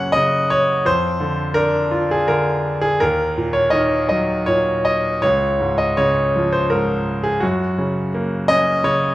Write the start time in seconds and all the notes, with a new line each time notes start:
Already playing: F#2 C#3 A#3 C#4 F#4 F#5
0.12 C#3 D#5
0.50 C#5
0.85 F2 C5
1.20 D3
1.54 D4 A#4
1.91 F4
2.11 G#4
2.28 D3 A#4
2.81 G#4
3.00 D#2 A#4
3.37 A#2
3.53 C#5
3.70 D#3 D#5
4.09 F#3 D#5
4.46 A#2 C#5
4.85 D#5
5.22 C#2 C#5
5.60 G#2
5.78 D#5
5.97 C#3 C#5
6.36 F3
6.52 C5
6.70 G#2 A#4
7.23 G#4
7.40 F#2 F#4
7.78 C#3
8.14 A#3
8.48 C#4 D#5
8.84 C#3 C#5